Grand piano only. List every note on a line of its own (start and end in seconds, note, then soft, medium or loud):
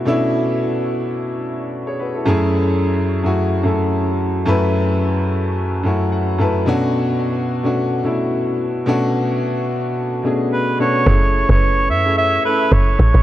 0.00 0.05 B2 medium
0.00 0.06 A3 medium
0.00 0.07 C#4 medium
0.00 0.07 D4 medium
0.00 0.08 E4 medium
0.00 2.00 F#4 loud
0.05 0.94 B2 loud
0.05 0.95 A3 loud
0.05 0.95 C#4 loud
0.05 0.95 D4 loud
0.05 0.96 E4 loud
1.87 1.99 G#4 soft
1.87 1.98 C#5 medium
1.99 2.14 F#4 medium
1.99 2.13 B4 medium
2.15 2.26 E4 medium
2.15 2.40 A4 medium
2.25 3.03 F#2 loud
2.25 3.04 A3 loud
2.25 3.04 C#4 loud
2.25 3.04 E4 loud
2.25 3.05 G#4 loud
3.23 3.56 F#2 medium
3.23 3.56 A3 medium
3.23 3.57 C#4 medium
3.23 3.57 E4 medium
3.23 3.57 F#4 medium
3.63 4.30 F#2 medium
3.63 4.31 A3 medium
3.63 4.31 C#4 medium
3.63 4.32 E4 medium
3.63 4.32 A4 medium
4.45 5.34 F#2 loud
4.45 5.35 A3 loud
4.45 5.35 C#4 loud
4.45 5.36 E4 loud
4.45 5.36 B4 loud
5.83 6.29 F#2 medium
5.83 6.29 A3 medium
5.83 6.29 C#4 medium
5.83 6.30 E4 medium
5.83 6.30 F#4 medium
6.12 6.37 F#5 medium
6.38 6.61 F#2 medium
6.38 6.61 A3 medium
6.38 6.62 C#4 medium
6.38 6.62 E4 medium
6.38 6.63 B4 loud
6.38 6.65 A5 medium
6.66 7.44 B2 loud
6.66 7.44 A3 loud
6.66 7.44 C#4 loud
6.66 7.45 D4 loud
6.66 7.45 F#4 loud
7.63 7.96 B2 medium
7.63 7.97 A3 medium
7.63 7.97 C#4 medium
7.63 7.97 D4 medium
7.63 7.98 F#4 medium
8.03 8.71 B2 medium
8.03 8.71 A3 medium
8.03 8.72 C#4 medium
8.03 8.72 D4 medium
8.03 8.72 E4 medium
8.86 9.75 B2 loud
8.86 9.75 A3 loud
8.86 9.76 C#4 loud
8.86 9.76 D4 loud
8.86 9.76 F#4 loud
10.23 10.69 B2 medium
10.23 10.69 A3 medium
10.23 10.70 C#4 medium
10.23 10.70 D4 medium
10.23 10.70 G#4 medium
10.79 11.01 B2 medium
10.79 11.02 A3 medium
10.79 11.02 C#4 medium
10.79 11.03 D4 medium
10.79 11.03 F#4 medium
11.06 11.40 A3 medium
11.06 11.41 C#4 medium
11.06 11.41 E4 medium
11.06 11.41 G#4 loud
11.49 11.92 A3 medium
11.49 11.93 C#4 medium
11.49 11.93 E4 medium
11.49 11.94 B4 medium
12.04 12.37 A3 medium
12.04 12.37 C#4 medium
12.04 12.38 E4 medium
12.04 12.38 G#4 medium
12.44 13.11 A3 medium
12.44 13.12 C#4 medium
12.44 13.12 E4 medium
12.44 13.13 A4 medium